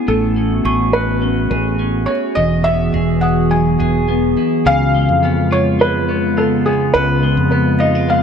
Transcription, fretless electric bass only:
0.08 A1
0.65 A1
1.51 A1
2.37 E1
2.94 E1
3.80 E1
4.66 C#2
5.09 F2
6.94 C#2
7.37 F2

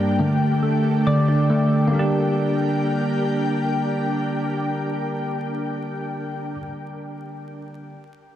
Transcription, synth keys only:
Already playing: G2 G3 A#3 D4
0.20 D3
0.63 A3
1.07 D5
1.28 D4
1.50 A3
1.87 D3
1.91 G3 A#3
1.99 D4

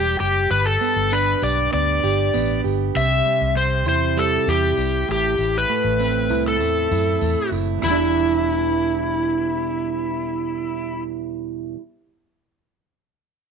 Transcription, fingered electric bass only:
Already playing: E1
0.20 F#1
0.51 G1
0.96 G1
1.42 B1
1.73 D2
2.04 G1
2.35 A1
2.65 G1
2.96 C2
3.41 C2
3.87 E2
4.47 E2
4.77 C2
5.09 A1
5.39 A1
5.84 A1
6.30 C2
6.61 E2
6.91 F#2
7.21 E2
7.51 F#1
7.82 E1

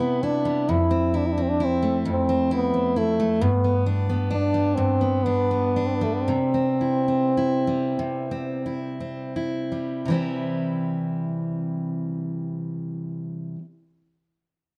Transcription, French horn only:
Already playing: B3
0.25 D4
0.70 E4
1.17 D4
1.26 E4
1.32 D4
1.43 C4
1.49 D4
1.65 C4
2.11 C4
2.55 B3
2.98 A3
3.42 B3
4.32 D4
4.75 C4
5.24 B3
5.86 C4
5.95 B3
6.03 A3
6.14 B3
6.22 C4

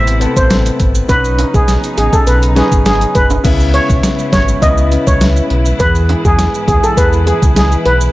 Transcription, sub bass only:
Already playing: A1
0.37 A1
0.80 G#1
1.09 B1
1.54 B1
1.97 A1
2.27 B1
2.72 G#1
3.15 F#1
3.45 C#2
3.90 B1
4.33 G#1
4.62 C#2
5.07 C#2
5.50 B1
5.80 E2
6.25 E2
6.68 D#2
6.97 E2
7.42 C#2
7.86 B1

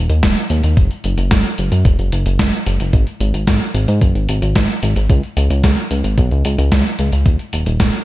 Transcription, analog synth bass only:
0.10 D#2
0.23 D#1
0.50 D#2
0.64 D#2
0.77 F#1
1.04 F#1
1.18 F#1
1.31 F#1
1.58 F#1
1.72 F#2
1.85 E1
1.99 F#1
2.13 F#1
2.26 F#1
2.39 F#1
2.67 F#1
2.80 F#1
2.93 G#1
3.20 G#1
3.34 G#1
3.47 G#1
3.74 G#1
3.88 G#2
4.02 F#1
4.15 G#1
4.29 G#1
4.42 G#1
4.56 G#1
4.83 G#1
4.96 G#1
5.10 C#2
5.37 C#2
5.50 C#2
5.64 C#2
5.91 C#2
6.04 G#1
6.18 B1
6.31 C#2
6.45 C#2
6.58 C#2
6.72 C#2
6.99 C#2
7.13 C#2
7.26 D#1
7.53 D#1
7.67 D#1
7.80 D#1

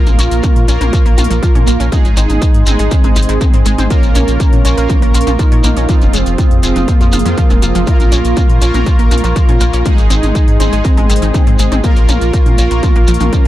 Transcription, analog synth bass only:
0.07 A#1
0.19 A#1
0.31 A#1
0.56 A#2
0.68 A#1
0.81 A#1
1.06 A#1
1.18 A#1
1.31 A#1
1.55 A#2
1.67 A#1
1.80 A#1
2.05 G#1
2.17 G#1
2.30 G#1
2.54 G#2
2.67 G#1
2.80 G#1
3.04 G#1
3.16 G#1
3.29 G#1
3.54 G#2
3.66 G#1
3.79 G#1
4.03 A#1
4.15 A#1
4.28 A#1
4.53 A#2
4.65 A#1
4.78 A#1
5.03 A#1
5.15 A#1
5.27 A#1
5.52 A#2
5.64 A#1
5.77 A#1
6.02 F1
6.14 F1
6.26 F1
6.51 F2
6.63 F1
6.76 F1
7.01 F2
7.13 F#1
7.26 F2
7.50 D#1
7.62 F1
7.75 F1
8.00 A#1
8.12 A#1
8.25 A#1
8.50 A#2
8.62 A#1
8.75 A#1
8.99 A#1
9.11 A#1
9.24 A#1
9.49 A#2
9.61 A#1
9.74 A#1
9.99 G#1
10.11 G#1
10.23 G#1
10.48 G#2
10.60 G#1
10.73 G#1
10.98 G#1
11.10 G#1
11.22 G#1
11.47 G#2
11.59 G#1
11.72 G#1
11.97 A#1
12.09 A#1
12.21 A#1
12.46 A#2
12.58 A#1
12.71 A#1
12.96 A#1
13.08 A#1
13.21 A#1

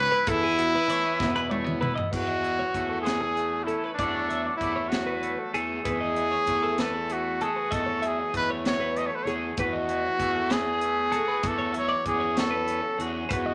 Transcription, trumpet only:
0.00 B4
0.29 E4
2.12 F#4
3.02 G#4
3.64 E4
3.94 D4
4.56 E4
4.89 F#4
5.84 G#4
6.80 A4
7.12 F#4
7.43 G#4
7.73 A4
8.07 G#4
8.37 B4
8.67 C#5
8.97 D#5
9.06 C#5
9.15 B4
9.24 C#5
9.60 F#4
10.52 G#4
11.47 A4
11.78 C#5
12.08 G#4
12.40 A4
13.33 F#4

